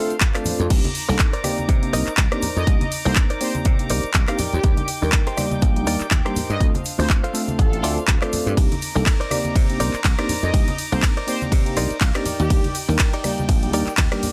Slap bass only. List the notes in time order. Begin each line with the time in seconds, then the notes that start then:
0.46 muted slap bass stroke
0.60 F2
0.70 C2
1.09 C2
1.69 C3
1.93 C2
2.07 muted slap bass stroke
2.18 C2
2.57 F2
2.67 C2
3.06 C2
3.65 C3
3.90 C2
4.04 muted slap bass stroke
4.15 C2
4.39 muted slap bass stroke
4.53 D#2
4.64 D#2
5.02 D#2
5.62 A#1
5.87 D#2
6.01 muted slap bass stroke
6.11 D#2
6.50 G2
6.60 D2
6.99 D2
7.59 A1
7.83 D2
7.97 muted slap bass stroke
8.08 D2
8.33 muted slap bass stroke
8.46 G2
8.57 C2
8.96 C2
9.56 C3
9.80 C2
9.94 muted slap bass stroke
10.05 C2
10.43 F2
10.54 C2
10.92 C2
11.52 C3
11.77 C2
11.91 muted slap bass stroke
12.01 C2
12.26 muted slap bass stroke
12.40 D#2
12.89 D#2
13.49 A#1
13.73 D#2
13.87 muted slap bass stroke
13.98 D#2